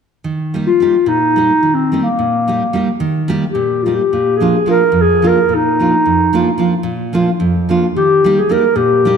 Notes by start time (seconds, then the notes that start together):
0.24 D#3
0.54 G3 A#3 D#4 G4
0.67 F4
0.80 G3 A#3 D#4 G4
1.06 A#2 D#4
1.36 G3 A#3 D#4 G4
1.63 D#3
1.74 C4
1.92 G3 A#3 D#4 G4
2.03 A#3
2.19 A#2
2.48 G3 A#3 D#4 G4
2.73 G3 A#3 D#4 G4
3.00 D#3
3.28 G3 A#3 D#4 G4
3.50 G4
3.55 A#2
3.83 G3 A#3 D#4 F4
3.88 G4
3.95 G4
4.13 A#2
4.37 F3 A#3 G#4
4.42 D4 F4
4.66 F3 A#3 D4 F4
4.70 A#4
4.92 F2
5.02 G#4
5.22 F3 A#3 D4 F4
5.27 A#4
5.49 A#2
5.55 D#4
5.80 F3 A#3 D4 F4
6.06 F2
6.33 F3 A#3 D4 F4
6.58 F3 A#3 D4 F4
6.83 A#2
7.13 F3 A#3 D4 F4
7.40 F2
7.69 F3 A#3 D4 F4
7.96 D#3 G4
8.24 G3 A#3 D#4 G4
8.38 G#4
8.49 G3 A#3 D#4 G4 A#4
8.76 A#2 G4
9.05 G3 A#3 D#4 G4